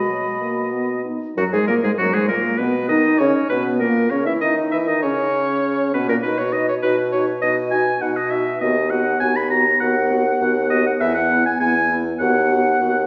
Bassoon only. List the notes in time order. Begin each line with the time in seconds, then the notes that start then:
Already playing: B2
1.37 F#2
1.53 G#2
1.68 A#2
1.83 G#2
1.98 F#2
2.13 G#2
2.29 A#2
2.59 B2
2.89 D#3
3.20 C#3
3.51 B2
3.81 A#2
4.12 C#3
4.27 E3
4.42 D#3
4.73 E3
4.88 D#3
5.04 C#3
5.94 B2
6.08 A#2
6.24 B2
6.84 B2
7.43 B2
8.03 B2
8.62 D#2
9.22 D#2
9.81 D#2
10.41 D#2
11.01 E2
11.60 E2
12.20 D#2
12.80 D#2